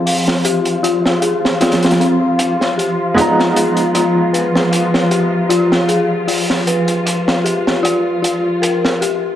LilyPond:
<<
  \new Staff \with { instrumentName = "Synth bell" } { \time 4/4 \key aes \major \tempo 4 = 77 f''8 g'8 f'8 aes'8 f'8 c'8 f''8 g'8 | f'8 aes'8 f'8 ces''8 f''8 g'8 f'8 aes'8 | f'8 ces''8 f''8 g'8 f'8 f'8 bes'8 g'8 | }
  \new Staff \with { instrumentName = "Upright piano" } { \time 4/4 \key aes \major <f aes c' ees'>1 | <aes ces' ees' bes''>1~ | <aes ces' ees' bes''>1 | }
  \new Staff \with { instrumentName = "String section" } { \time 4/4 \key aes \major <f f'>1~ | <f f'>1~ | <f f'>1 | }
  \new DrumStaff \with { instrumentName = "Drums" } \drummode { \time 4/4 hho16 sn16 hh16 hh16 hh16 sn16 hh16 sn16 <hh sn>32 <hh sn>32 <hh sn>32 <hh sn>32 hh8 hh16 sn16 hh8 | hh16 sn16 hh16 hh16 hh8 hh16 sn16 hh16 sn16 hh8 hh16 sn16 hh8 | hho16 sn16 hh16 hh16 hh16 sn16 hh16 sn16 hh8 hh8 hh16 sn16 hh8 | }
>>